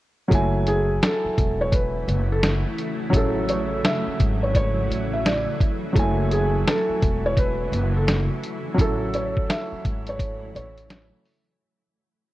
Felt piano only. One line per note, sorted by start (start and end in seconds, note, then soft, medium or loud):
0.68 0.99 G#4 medium
1.03 1.57 A4 medium
1.61 1.72 C#5 medium
1.74 2.28 B4 medium
2.32 2.43 A4 medium
3.50 3.81 C#5 medium
3.85 4.39 E5 medium
4.43 4.54 C#5 medium
4.56 5.10 C#5 medium
5.13 5.25 E5 medium
5.26 5.57 D5 medium
6.32 6.64 G#4 medium
6.67 7.22 A4 medium
7.26 7.37 C#5 medium
7.38 7.93 B4 medium
7.97 8.07 A4 medium
9.15 9.46 C#5 medium
9.50 10.04 E5 medium
10.09 10.53 C#5 medium
10.56 11.10 C#5 medium